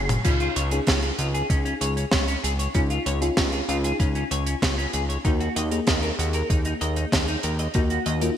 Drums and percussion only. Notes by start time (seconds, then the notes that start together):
0.09 closed hi-hat, mid tom
0.24 kick, closed hi-hat, crash
0.40 closed hi-hat
0.56 closed hi-hat
0.71 closed hi-hat
0.87 kick, snare, closed hi-hat
1.02 closed hi-hat
1.19 closed hi-hat
1.35 closed hi-hat
1.50 kick, closed hi-hat
1.66 closed hi-hat
1.81 closed hi-hat
1.97 closed hi-hat
2.11 kick, snare, closed hi-hat
2.28 closed hi-hat
2.44 closed hi-hat
2.59 closed hi-hat
2.74 kick, closed hi-hat
2.90 closed hi-hat
3.06 closed hi-hat
3.22 closed hi-hat
3.37 kick, snare, closed hi-hat
3.52 closed hi-hat
3.69 closed hi-hat
3.84 closed hi-hat
4.00 kick, closed hi-hat
4.15 closed hi-hat
4.31 closed hi-hat
4.47 closed hi-hat
4.62 kick, snare, closed hi-hat
4.79 closed hi-hat
4.93 closed hi-hat
5.10 closed hi-hat
5.25 kick, closed hi-hat
5.41 closed hi-hat
5.56 closed hi-hat
5.71 closed hi-hat
5.87 kick, snare, closed hi-hat
6.03 closed hi-hat
6.19 closed hi-hat
6.33 closed hi-hat
6.50 kick, closed hi-hat
6.65 closed hi-hat
6.81 closed hi-hat
6.96 closed hi-hat
7.12 kick, snare, closed hi-hat
7.28 closed hi-hat
7.43 closed hi-hat
7.59 closed hi-hat
7.74 kick, closed hi-hat
7.90 closed hi-hat
8.06 closed hi-hat
8.21 closed hi-hat